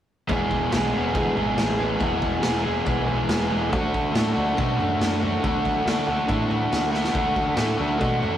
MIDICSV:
0, 0, Header, 1, 4, 480
1, 0, Start_track
1, 0, Tempo, 428571
1, 344, Time_signature, 4, 2, 24, 8
1, 9381, End_track
2, 0, Start_track
2, 0, Title_t, "Overdriven electric guitar"
2, 0, Program_c, 0, 29
2, 311, Note_on_c, 0, 40, 90
2, 325, Note_on_c, 0, 47, 97
2, 341, Note_on_c, 0, 52, 93
2, 349, Note_on_c, 0, 56, 88
2, 356, Note_on_c, 0, 59, 100
2, 370, Note_on_c, 0, 68, 109
2, 789, Note_off_c, 0, 52, 0
2, 793, Note_on_c, 0, 52, 77
2, 822, Note_off_c, 0, 56, 0
2, 827, Note_on_c, 0, 56, 82
2, 836, Note_off_c, 0, 59, 0
2, 841, Note_on_c, 0, 59, 73
2, 849, Note_off_c, 0, 68, 0
2, 853, Note_on_c, 0, 68, 83
2, 1043, Note_off_c, 0, 68, 0
2, 1047, Note_on_c, 0, 68, 66
2, 1056, Note_off_c, 0, 47, 0
2, 1066, Note_off_c, 0, 59, 0
2, 1070, Note_on_c, 0, 59, 74
2, 1079, Note_off_c, 0, 56, 0
2, 1083, Note_on_c, 0, 56, 62
2, 1090, Note_off_c, 0, 52, 0
2, 1094, Note_on_c, 0, 52, 55
2, 1255, Note_off_c, 0, 40, 0
2, 1259, Note_on_c, 0, 40, 78
2, 1274, Note_off_c, 0, 52, 0
2, 1280, Note_on_c, 0, 47, 84
2, 1282, Note_off_c, 0, 56, 0
2, 1288, Note_on_c, 0, 52, 90
2, 1296, Note_off_c, 0, 59, 0
2, 1296, Note_on_c, 0, 56, 83
2, 1306, Note_off_c, 0, 68, 0
2, 1310, Note_on_c, 0, 59, 95
2, 1319, Note_on_c, 0, 68, 93
2, 1509, Note_off_c, 0, 68, 0
2, 1522, Note_on_c, 0, 68, 73
2, 1536, Note_off_c, 0, 59, 0
2, 1549, Note_on_c, 0, 59, 62
2, 1553, Note_off_c, 0, 56, 0
2, 1566, Note_on_c, 0, 56, 65
2, 1568, Note_off_c, 0, 52, 0
2, 1581, Note_on_c, 0, 52, 54
2, 1762, Note_off_c, 0, 40, 0
2, 1772, Note_off_c, 0, 47, 0
2, 1976, Note_off_c, 0, 68, 0
2, 1990, Note_on_c, 0, 68, 64
2, 1991, Note_off_c, 0, 59, 0
2, 2005, Note_on_c, 0, 59, 65
2, 2007, Note_off_c, 0, 56, 0
2, 2020, Note_on_c, 0, 56, 58
2, 2028, Note_off_c, 0, 52, 0
2, 2042, Note_on_c, 0, 52, 59
2, 2220, Note_on_c, 0, 40, 91
2, 2229, Note_off_c, 0, 52, 0
2, 2232, Note_on_c, 0, 47, 90
2, 2235, Note_off_c, 0, 56, 0
2, 2243, Note_on_c, 0, 52, 93
2, 2249, Note_on_c, 0, 56, 88
2, 2256, Note_off_c, 0, 59, 0
2, 2258, Note_off_c, 0, 68, 0
2, 2270, Note_on_c, 0, 59, 96
2, 2272, Note_on_c, 0, 68, 102
2, 2677, Note_off_c, 0, 52, 0
2, 2691, Note_on_c, 0, 52, 75
2, 2707, Note_off_c, 0, 56, 0
2, 2715, Note_off_c, 0, 59, 0
2, 2721, Note_on_c, 0, 56, 81
2, 2729, Note_on_c, 0, 59, 85
2, 2734, Note_off_c, 0, 68, 0
2, 2747, Note_on_c, 0, 68, 81
2, 2930, Note_off_c, 0, 68, 0
2, 2940, Note_off_c, 0, 59, 0
2, 2944, Note_on_c, 0, 68, 77
2, 2954, Note_on_c, 0, 59, 76
2, 2960, Note_off_c, 0, 56, 0
2, 2961, Note_off_c, 0, 40, 0
2, 2967, Note_off_c, 0, 47, 0
2, 2974, Note_on_c, 0, 56, 65
2, 2977, Note_off_c, 0, 52, 0
2, 2991, Note_on_c, 0, 52, 63
2, 3181, Note_on_c, 0, 40, 84
2, 3192, Note_off_c, 0, 52, 0
2, 3195, Note_on_c, 0, 47, 83
2, 3196, Note_off_c, 0, 56, 0
2, 3206, Note_on_c, 0, 52, 85
2, 3209, Note_on_c, 0, 56, 91
2, 3217, Note_off_c, 0, 59, 0
2, 3217, Note_off_c, 0, 68, 0
2, 3230, Note_on_c, 0, 59, 92
2, 3230, Note_on_c, 0, 68, 102
2, 3406, Note_off_c, 0, 68, 0
2, 3419, Note_on_c, 0, 68, 71
2, 3428, Note_off_c, 0, 59, 0
2, 3441, Note_on_c, 0, 59, 67
2, 3449, Note_off_c, 0, 56, 0
2, 3458, Note_off_c, 0, 52, 0
2, 3462, Note_on_c, 0, 56, 66
2, 3472, Note_on_c, 0, 52, 63
2, 3680, Note_off_c, 0, 40, 0
2, 3687, Note_off_c, 0, 47, 0
2, 3871, Note_off_c, 0, 68, 0
2, 3884, Note_on_c, 0, 68, 64
2, 3902, Note_off_c, 0, 59, 0
2, 3910, Note_off_c, 0, 56, 0
2, 3915, Note_on_c, 0, 59, 61
2, 3923, Note_on_c, 0, 56, 63
2, 3934, Note_off_c, 0, 52, 0
2, 3948, Note_on_c, 0, 52, 57
2, 4133, Note_off_c, 0, 52, 0
2, 4137, Note_off_c, 0, 68, 0
2, 4137, Note_on_c, 0, 50, 94
2, 4149, Note_off_c, 0, 56, 0
2, 4153, Note_off_c, 0, 59, 0
2, 4153, Note_on_c, 0, 57, 94
2, 4180, Note_on_c, 0, 62, 106
2, 4198, Note_on_c, 0, 66, 102
2, 4610, Note_off_c, 0, 50, 0
2, 4615, Note_on_c, 0, 50, 80
2, 4642, Note_off_c, 0, 57, 0
2, 4646, Note_on_c, 0, 57, 74
2, 4648, Note_off_c, 0, 62, 0
2, 4653, Note_on_c, 0, 62, 82
2, 4671, Note_off_c, 0, 66, 0
2, 4676, Note_on_c, 0, 66, 83
2, 4846, Note_off_c, 0, 66, 0
2, 4850, Note_on_c, 0, 66, 69
2, 4875, Note_off_c, 0, 62, 0
2, 4879, Note_on_c, 0, 62, 71
2, 4904, Note_off_c, 0, 57, 0
2, 4909, Note_on_c, 0, 57, 58
2, 5092, Note_off_c, 0, 50, 0
2, 5097, Note_on_c, 0, 50, 83
2, 5126, Note_off_c, 0, 57, 0
2, 5131, Note_on_c, 0, 57, 88
2, 5134, Note_off_c, 0, 62, 0
2, 5139, Note_on_c, 0, 62, 90
2, 5150, Note_off_c, 0, 66, 0
2, 5154, Note_on_c, 0, 66, 93
2, 5336, Note_off_c, 0, 66, 0
2, 5340, Note_on_c, 0, 66, 65
2, 5368, Note_off_c, 0, 62, 0
2, 5372, Note_on_c, 0, 62, 70
2, 5387, Note_off_c, 0, 57, 0
2, 5391, Note_on_c, 0, 57, 55
2, 5826, Note_off_c, 0, 66, 0
2, 5830, Note_on_c, 0, 66, 65
2, 5859, Note_off_c, 0, 62, 0
2, 5863, Note_on_c, 0, 62, 58
2, 5881, Note_off_c, 0, 57, 0
2, 5885, Note_on_c, 0, 57, 49
2, 6071, Note_off_c, 0, 50, 0
2, 6076, Note_on_c, 0, 50, 94
2, 6093, Note_off_c, 0, 57, 0
2, 6097, Note_on_c, 0, 57, 91
2, 6115, Note_off_c, 0, 62, 0
2, 6119, Note_on_c, 0, 62, 93
2, 6123, Note_off_c, 0, 66, 0
2, 6128, Note_on_c, 0, 66, 105
2, 6547, Note_off_c, 0, 50, 0
2, 6552, Note_on_c, 0, 50, 74
2, 6564, Note_off_c, 0, 57, 0
2, 6569, Note_on_c, 0, 57, 82
2, 6590, Note_off_c, 0, 62, 0
2, 6594, Note_on_c, 0, 62, 76
2, 6601, Note_off_c, 0, 66, 0
2, 6605, Note_on_c, 0, 66, 88
2, 6792, Note_off_c, 0, 66, 0
2, 6797, Note_on_c, 0, 66, 69
2, 6822, Note_off_c, 0, 62, 0
2, 6826, Note_on_c, 0, 62, 68
2, 6849, Note_off_c, 0, 57, 0
2, 6854, Note_on_c, 0, 57, 56
2, 7023, Note_off_c, 0, 50, 0
2, 7028, Note_on_c, 0, 50, 85
2, 7042, Note_off_c, 0, 57, 0
2, 7047, Note_on_c, 0, 57, 87
2, 7061, Note_off_c, 0, 62, 0
2, 7066, Note_on_c, 0, 62, 86
2, 7078, Note_off_c, 0, 66, 0
2, 7083, Note_on_c, 0, 66, 87
2, 7263, Note_off_c, 0, 66, 0
2, 7267, Note_on_c, 0, 66, 66
2, 7288, Note_off_c, 0, 62, 0
2, 7292, Note_on_c, 0, 62, 64
2, 7320, Note_off_c, 0, 57, 0
2, 7324, Note_on_c, 0, 57, 56
2, 7743, Note_off_c, 0, 66, 0
2, 7747, Note_on_c, 0, 66, 62
2, 7777, Note_off_c, 0, 62, 0
2, 7781, Note_on_c, 0, 62, 63
2, 7798, Note_off_c, 0, 57, 0
2, 7802, Note_on_c, 0, 57, 54
2, 7977, Note_off_c, 0, 50, 0
2, 7981, Note_on_c, 0, 50, 87
2, 8001, Note_off_c, 0, 57, 0
2, 8005, Note_on_c, 0, 57, 86
2, 8009, Note_off_c, 0, 62, 0
2, 8014, Note_on_c, 0, 62, 97
2, 8025, Note_off_c, 0, 66, 0
2, 8029, Note_on_c, 0, 66, 104
2, 8446, Note_off_c, 0, 50, 0
2, 8451, Note_on_c, 0, 50, 78
2, 8474, Note_off_c, 0, 57, 0
2, 8479, Note_on_c, 0, 57, 83
2, 8484, Note_off_c, 0, 62, 0
2, 8489, Note_on_c, 0, 62, 81
2, 8506, Note_off_c, 0, 66, 0
2, 8510, Note_on_c, 0, 66, 88
2, 8699, Note_off_c, 0, 66, 0
2, 8704, Note_on_c, 0, 66, 74
2, 8731, Note_off_c, 0, 62, 0
2, 8735, Note_on_c, 0, 62, 69
2, 8748, Note_off_c, 0, 57, 0
2, 8753, Note_on_c, 0, 57, 60
2, 8935, Note_off_c, 0, 50, 0
2, 8940, Note_on_c, 0, 50, 83
2, 8946, Note_off_c, 0, 57, 0
2, 8960, Note_on_c, 0, 57, 96
2, 8964, Note_off_c, 0, 62, 0
2, 8977, Note_on_c, 0, 62, 80
2, 8979, Note_off_c, 0, 66, 0
2, 8993, Note_on_c, 0, 66, 94
2, 9176, Note_off_c, 0, 66, 0
2, 9189, Note_on_c, 0, 66, 68
2, 9205, Note_off_c, 0, 62, 0
2, 9219, Note_on_c, 0, 62, 59
2, 9231, Note_off_c, 0, 57, 0
2, 9245, Note_on_c, 0, 57, 60
2, 9381, Note_off_c, 0, 50, 0
2, 9381, Note_off_c, 0, 57, 0
2, 9381, Note_off_c, 0, 62, 0
2, 9381, Note_off_c, 0, 66, 0
2, 9381, End_track
3, 0, Start_track
3, 0, Title_t, "Picked electric bass"
3, 0, Program_c, 1, 34
3, 334, Note_on_c, 1, 28, 86
3, 544, Note_off_c, 1, 28, 0
3, 563, Note_on_c, 1, 28, 88
3, 778, Note_off_c, 1, 28, 0
3, 810, Note_on_c, 1, 35, 75
3, 1022, Note_off_c, 1, 35, 0
3, 1058, Note_on_c, 1, 28, 82
3, 1267, Note_off_c, 1, 28, 0
3, 1283, Note_on_c, 1, 38, 91
3, 1498, Note_off_c, 1, 38, 0
3, 1527, Note_on_c, 1, 32, 75
3, 1740, Note_off_c, 1, 32, 0
3, 1771, Note_on_c, 1, 33, 87
3, 2188, Note_off_c, 1, 33, 0
3, 2246, Note_on_c, 1, 28, 92
3, 2665, Note_off_c, 1, 28, 0
3, 2723, Note_on_c, 1, 28, 84
3, 3142, Note_off_c, 1, 28, 0
3, 3206, Note_on_c, 1, 35, 87
3, 3623, Note_off_c, 1, 35, 0
3, 3682, Note_on_c, 1, 28, 87
3, 4176, Note_off_c, 1, 28, 0
3, 4176, Note_on_c, 1, 38, 85
3, 4383, Note_off_c, 1, 38, 0
3, 4413, Note_on_c, 1, 38, 93
3, 4621, Note_off_c, 1, 38, 0
3, 4647, Note_on_c, 1, 45, 83
3, 4857, Note_off_c, 1, 45, 0
3, 4897, Note_on_c, 1, 38, 83
3, 5102, Note_off_c, 1, 38, 0
3, 5124, Note_on_c, 1, 47, 89
3, 5335, Note_off_c, 1, 47, 0
3, 5360, Note_on_c, 1, 42, 84
3, 5572, Note_off_c, 1, 42, 0
3, 5600, Note_on_c, 1, 42, 87
3, 6018, Note_off_c, 1, 42, 0
3, 6093, Note_on_c, 1, 38, 86
3, 6505, Note_off_c, 1, 38, 0
3, 6559, Note_on_c, 1, 38, 80
3, 6977, Note_off_c, 1, 38, 0
3, 7047, Note_on_c, 1, 45, 87
3, 7462, Note_off_c, 1, 45, 0
3, 7525, Note_on_c, 1, 38, 89
3, 7942, Note_off_c, 1, 38, 0
3, 8007, Note_on_c, 1, 38, 81
3, 8217, Note_off_c, 1, 38, 0
3, 8242, Note_on_c, 1, 38, 87
3, 8455, Note_off_c, 1, 38, 0
3, 8485, Note_on_c, 1, 45, 83
3, 8697, Note_off_c, 1, 45, 0
3, 8735, Note_on_c, 1, 38, 83
3, 8943, Note_off_c, 1, 38, 0
3, 8965, Note_on_c, 1, 47, 84
3, 9178, Note_off_c, 1, 47, 0
3, 9216, Note_on_c, 1, 42, 71
3, 9381, Note_off_c, 1, 42, 0
3, 9381, End_track
4, 0, Start_track
4, 0, Title_t, "Drums"
4, 324, Note_on_c, 9, 43, 83
4, 329, Note_on_c, 9, 36, 108
4, 436, Note_off_c, 9, 43, 0
4, 441, Note_off_c, 9, 36, 0
4, 571, Note_on_c, 9, 36, 73
4, 572, Note_on_c, 9, 43, 58
4, 683, Note_off_c, 9, 36, 0
4, 684, Note_off_c, 9, 43, 0
4, 808, Note_on_c, 9, 43, 85
4, 813, Note_on_c, 9, 38, 112
4, 920, Note_off_c, 9, 43, 0
4, 925, Note_off_c, 9, 38, 0
4, 1052, Note_on_c, 9, 43, 64
4, 1164, Note_off_c, 9, 43, 0
4, 1287, Note_on_c, 9, 36, 110
4, 1288, Note_on_c, 9, 43, 87
4, 1399, Note_off_c, 9, 36, 0
4, 1400, Note_off_c, 9, 43, 0
4, 1536, Note_on_c, 9, 43, 65
4, 1648, Note_off_c, 9, 43, 0
4, 1765, Note_on_c, 9, 43, 80
4, 1769, Note_on_c, 9, 38, 94
4, 1877, Note_off_c, 9, 43, 0
4, 1881, Note_off_c, 9, 38, 0
4, 2002, Note_on_c, 9, 43, 60
4, 2114, Note_off_c, 9, 43, 0
4, 2240, Note_on_c, 9, 43, 90
4, 2246, Note_on_c, 9, 36, 111
4, 2352, Note_off_c, 9, 43, 0
4, 2358, Note_off_c, 9, 36, 0
4, 2486, Note_on_c, 9, 43, 59
4, 2487, Note_on_c, 9, 36, 77
4, 2598, Note_off_c, 9, 43, 0
4, 2599, Note_off_c, 9, 36, 0
4, 2717, Note_on_c, 9, 43, 83
4, 2722, Note_on_c, 9, 38, 113
4, 2829, Note_off_c, 9, 43, 0
4, 2834, Note_off_c, 9, 38, 0
4, 2962, Note_on_c, 9, 43, 57
4, 3074, Note_off_c, 9, 43, 0
4, 3204, Note_on_c, 9, 43, 82
4, 3210, Note_on_c, 9, 36, 112
4, 3316, Note_off_c, 9, 43, 0
4, 3322, Note_off_c, 9, 36, 0
4, 3450, Note_on_c, 9, 43, 63
4, 3562, Note_off_c, 9, 43, 0
4, 3683, Note_on_c, 9, 43, 77
4, 3688, Note_on_c, 9, 38, 106
4, 3795, Note_off_c, 9, 43, 0
4, 3800, Note_off_c, 9, 38, 0
4, 3935, Note_on_c, 9, 43, 61
4, 4047, Note_off_c, 9, 43, 0
4, 4171, Note_on_c, 9, 43, 83
4, 4176, Note_on_c, 9, 36, 119
4, 4283, Note_off_c, 9, 43, 0
4, 4288, Note_off_c, 9, 36, 0
4, 4412, Note_on_c, 9, 43, 59
4, 4417, Note_on_c, 9, 36, 80
4, 4524, Note_off_c, 9, 43, 0
4, 4529, Note_off_c, 9, 36, 0
4, 4649, Note_on_c, 9, 43, 81
4, 4654, Note_on_c, 9, 38, 113
4, 4761, Note_off_c, 9, 43, 0
4, 4766, Note_off_c, 9, 38, 0
4, 4890, Note_on_c, 9, 43, 63
4, 5002, Note_off_c, 9, 43, 0
4, 5122, Note_on_c, 9, 43, 82
4, 5132, Note_on_c, 9, 36, 118
4, 5234, Note_off_c, 9, 43, 0
4, 5244, Note_off_c, 9, 36, 0
4, 5378, Note_on_c, 9, 43, 64
4, 5490, Note_off_c, 9, 43, 0
4, 5613, Note_on_c, 9, 43, 77
4, 5617, Note_on_c, 9, 38, 99
4, 5725, Note_off_c, 9, 43, 0
4, 5729, Note_off_c, 9, 38, 0
4, 5855, Note_on_c, 9, 43, 66
4, 5967, Note_off_c, 9, 43, 0
4, 6092, Note_on_c, 9, 36, 116
4, 6093, Note_on_c, 9, 43, 87
4, 6204, Note_off_c, 9, 36, 0
4, 6205, Note_off_c, 9, 43, 0
4, 6332, Note_on_c, 9, 36, 74
4, 6337, Note_on_c, 9, 43, 60
4, 6444, Note_off_c, 9, 36, 0
4, 6449, Note_off_c, 9, 43, 0
4, 6578, Note_on_c, 9, 43, 82
4, 6582, Note_on_c, 9, 38, 109
4, 6690, Note_off_c, 9, 43, 0
4, 6694, Note_off_c, 9, 38, 0
4, 6813, Note_on_c, 9, 43, 56
4, 6925, Note_off_c, 9, 43, 0
4, 7039, Note_on_c, 9, 43, 79
4, 7046, Note_on_c, 9, 36, 117
4, 7151, Note_off_c, 9, 43, 0
4, 7158, Note_off_c, 9, 36, 0
4, 7291, Note_on_c, 9, 43, 61
4, 7403, Note_off_c, 9, 43, 0
4, 7530, Note_on_c, 9, 43, 75
4, 7535, Note_on_c, 9, 38, 91
4, 7642, Note_off_c, 9, 43, 0
4, 7647, Note_off_c, 9, 38, 0
4, 7774, Note_on_c, 9, 38, 61
4, 7886, Note_off_c, 9, 38, 0
4, 7889, Note_on_c, 9, 38, 74
4, 8001, Note_off_c, 9, 38, 0
4, 8007, Note_on_c, 9, 36, 109
4, 8008, Note_on_c, 9, 43, 82
4, 8119, Note_off_c, 9, 36, 0
4, 8120, Note_off_c, 9, 43, 0
4, 8246, Note_on_c, 9, 36, 76
4, 8246, Note_on_c, 9, 43, 57
4, 8358, Note_off_c, 9, 36, 0
4, 8358, Note_off_c, 9, 43, 0
4, 8475, Note_on_c, 9, 43, 81
4, 8480, Note_on_c, 9, 38, 109
4, 8587, Note_off_c, 9, 43, 0
4, 8592, Note_off_c, 9, 38, 0
4, 8727, Note_on_c, 9, 43, 59
4, 8839, Note_off_c, 9, 43, 0
4, 8966, Note_on_c, 9, 43, 86
4, 8971, Note_on_c, 9, 36, 110
4, 9078, Note_off_c, 9, 43, 0
4, 9083, Note_off_c, 9, 36, 0
4, 9215, Note_on_c, 9, 43, 64
4, 9327, Note_off_c, 9, 43, 0
4, 9381, End_track
0, 0, End_of_file